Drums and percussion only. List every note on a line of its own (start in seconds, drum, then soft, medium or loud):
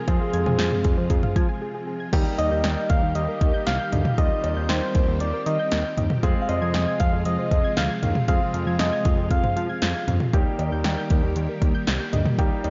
0.08 kick loud
0.08 closed hi-hat medium
0.33 closed hi-hat medium
0.46 mid tom loud
0.59 snare loud
0.59 closed hi-hat medium
0.72 mid tom medium
0.84 kick loud
0.84 closed hi-hat medium
1.10 kick medium
1.10 closed hi-hat medium
1.23 mid tom medium
1.36 kick medium
1.36 closed hi-hat medium
2.13 kick loud
2.13 closed hi-hat medium
2.13 crash medium
2.39 closed hi-hat medium
2.39 cowbell medium
2.64 snare loud
2.64 closed hi-hat medium
2.90 kick loud
2.90 closed hi-hat medium
3.15 closed hi-hat medium
3.41 kick medium
3.41 closed hi-hat medium
3.67 snare loud
3.67 closed hi-hat medium
3.92 closed hi-hat medium
3.92 mid tom loud
4.05 mid tom medium
4.18 kick loud
4.18 closed hi-hat medium
4.44 closed hi-hat medium
4.44 cowbell medium
4.69 snare loud
4.69 closed hi-hat medium
4.95 kick loud
4.95 closed hi-hat medium
5.20 closed hi-hat medium
5.46 closed hi-hat medium
5.72 snare loud
5.72 closed hi-hat medium
5.97 closed hi-hat medium
5.97 mid tom loud
6.10 mid tom loud
6.23 kick loud
6.23 closed hi-hat medium
6.49 closed hi-hat medium
6.49 cowbell medium
6.74 snare loud
6.74 closed hi-hat medium
7.00 kick loud
7.00 closed hi-hat medium
7.25 closed hi-hat medium
7.51 kick medium
7.51 closed hi-hat medium
7.77 snare loud
7.77 closed hi-hat medium
8.03 closed hi-hat medium
8.03 mid tom loud
8.15 mid tom loud
8.28 kick loud
8.28 closed hi-hat medium
8.54 closed hi-hat medium
8.79 snare loud
8.79 closed hi-hat medium
9.05 kick loud
9.05 closed hi-hat medium
9.31 kick medium
9.31 closed hi-hat medium
9.44 mid tom medium
9.57 closed hi-hat medium
9.82 snare loud
9.82 closed hi-hat medium
10.08 closed hi-hat medium
10.08 mid tom medium
10.20 mid tom loud
10.33 kick loud
10.33 closed hi-hat medium
10.59 closed hi-hat medium
10.59 cowbell medium
10.84 snare loud
10.84 closed hi-hat medium
11.10 kick loud
11.10 closed hi-hat medium
11.36 closed hi-hat medium
11.62 kick medium
11.62 closed hi-hat medium
11.87 snare loud
11.87 closed hi-hat medium
12.13 closed hi-hat medium
12.13 mid tom loud
12.26 mid tom loud
12.39 kick loud
12.39 closed hi-hat medium
12.64 closed hi-hat medium
12.64 cowbell medium